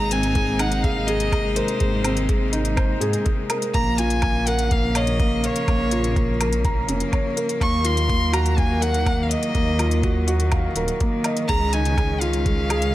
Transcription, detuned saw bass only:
0.00 1.61 G#1 loud
1.81 2.94 G#1 loud
3.01 3.16 G#2 loud
3.75 5.48 A#1 loud
5.68 6.81 A#1 medium
6.88 7.03 F1 medium
7.61 9.35 D#2 loud
9.55 10.68 D#2 loud
10.75 10.90 D#1 medium
11.49 12.95 C#2 loud

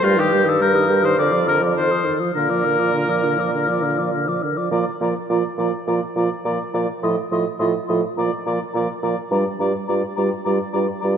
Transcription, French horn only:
0.03 0.20 G3 medium
0.18 0.33 D#3 medium
0.32 0.48 G3 medium
0.46 0.60 D#3 medium
0.60 0.76 G3 medium
0.75 0.91 D#3 medium
0.89 1.05 G3 medium
1.04 1.17 D#3 soft
1.18 1.33 D3 medium
1.32 1.48 F3 soft
1.46 1.62 D3 soft
1.61 1.75 F3 medium
1.76 1.91 D#3 soft
1.90 2.06 F3 soft
2.04 2.21 D#3 soft
2.20 2.34 F3 soft
2.34 2.51 D3 medium
2.50 2.66 F3 soft
2.65 2.81 D3 soft
2.79 2.93 F3 soft
2.94 3.10 D3 soft
3.08 3.25 F3 soft
3.24 3.39 D3 soft
3.37 3.52 F3 soft
3.53 3.70 D3 soft
3.68 3.84 F3 soft
3.83 4.00 D3 soft
3.99 4.13 F3 medium
4.13 4.29 D3 soft
4.28 4.45 F3 soft
4.43 4.59 D3 soft
4.57 4.71 F3 soft
4.72 4.85 F3 medium
5.01 5.14 F3 soft
5.30 5.43 F3 soft
5.59 5.72 F3 soft
5.88 6.01 F3 soft
6.16 6.30 F3 soft
6.45 6.58 F3 soft
6.74 6.87 F3 soft
7.03 7.16 F3 medium
7.32 7.45 F3 soft
7.61 7.74 F3 soft
7.89 8.02 F3 soft
8.17 8.30 F3 soft
8.47 8.59 F3 soft
8.75 8.88 F3 soft
9.03 9.16 F3 soft
9.32 9.45 G3 medium
9.61 9.73 G3 soft
9.89 10.02 G3 soft
10.18 10.30 G3 medium
10.46 10.59 G3 soft
10.73 10.86 G3 soft
11.03 11.16 G3 medium

